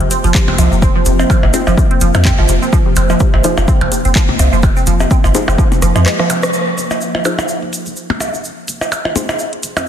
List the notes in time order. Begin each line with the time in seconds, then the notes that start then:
Already playing: F3 A#3
0.00 F1 C3, closed hi-hat
0.11 C4, closed hi-hat, shaker
0.24 F1 F3, closed hi-hat, shaker
0.35 C3, kick, clap, shaker
0.48 F1 C4, percussion blips
0.58 C2 F3, closed hi-hat, percussion blips, shaker
0.72 F1 C3, shaker
0.82 C4, kick, shaker
0.96 F3
1.06 F1 C3, closed hi-hat, shaker
1.19 C4, percussion blips, shaker
1.30 F3, kick, percussion blips, shaker
1.43 G#1 C3, percussion blips
1.54 C4 D#4 F4 G#4 C5, closed hi-hat, percussion blips, shaker
1.67 F1 F3, percussion blips, shaker
1.77 C3, kick, shaker
1.91 C4, closed hi-hat
2.01 F1 F3, closed hi-hat, shaker
2.14 F2 C3, closed hi-hat, percussion blips, shaker
2.25 C4, kick, clap, shaker
2.38 G#1 F3, percussion blips
2.49 F1 C3, closed hi-hat, shaker
2.62 C4, shaker
2.73 F3, kick, shaker
2.86 C3
2.96 F1 C4, closed hi-hat, percussion blips, shaker
3.10 F3, percussion blips, shaker
3.20 C3, kick, shaker
3.34 G#1 C4, percussion blips
3.44 F3 D#4 F4 G#4 C5, closed hi-hat, shaker
3.57 F1 C3, percussion blips, shaker
3.68 C4, kick, shaker
3.81 F1 F3, closed hi-hat, percussion blips
3.92 C3, closed hi-hat, shaker
4.05 F1 C4, closed hi-hat, shaker
4.15 F3, kick, clap, shaker
4.29 F1 C3, percussion blips
4.39 C2 C4, closed hi-hat, percussion blips, shaker
4.53 F1 F3, shaker
4.63 C3, kick, percussion blips, shaker
4.77 C4, shaker
4.87 F1 F3, closed hi-hat, shaker
5.00 C3, percussion blips, shaker
5.11 C4, kick, shaker
5.24 G#1 F3, percussion blips, shaker
5.35 C3 D#4 F4 G#4 C5, closed hi-hat, percussion blips, shaker
5.48 F1 C4, percussion blips, shaker
5.58 F3, kick, shaker
5.72 C3, closed hi-hat, percussion blips, shaker
5.82 F1 F3, cross-stick, closed hi-hat, shaker
5.95 F2 F3, closed hi-hat, percussion blips, shaker
6.06 G#3, cross-stick, clap, shaker
6.19 F3, cross-stick, percussion blips
6.30 C3, closed hi-hat, percussion blips, shaker
6.43 cross-stick, shaker
6.53 shaker
6.78 F1, closed hi-hat, shaker
6.91 percussion blips, shaker
7.01 shaker
7.15 G#1, percussion blips
7.25 D#4 F4 G#4 C5, closed hi-hat, percussion blips, shaker
7.38 F1, percussion blips, shaker
7.48 shaker
7.62 F1, closed hi-hat
7.73 closed hi-hat, shaker
7.86 F1, closed hi-hat, shaker
7.96 shaker
8.10 F1, percussion blips
8.20 C2, closed hi-hat, percussion blips, shaker
8.34 F1, shaker
8.44 shaker
8.68 F1, closed hi-hat, shaker
8.81 percussion blips, shaker
8.92 percussion blips, shaker
9.05 G#1, percussion blips
9.16 D#4 F4 G#4 C5, closed hi-hat, percussion blips, shaker
9.29 F1, percussion blips, shaker
9.39 shaker
9.53 closed hi-hat
9.63 F1, closed hi-hat, shaker
9.77 F2, closed hi-hat, percussion blips, shaker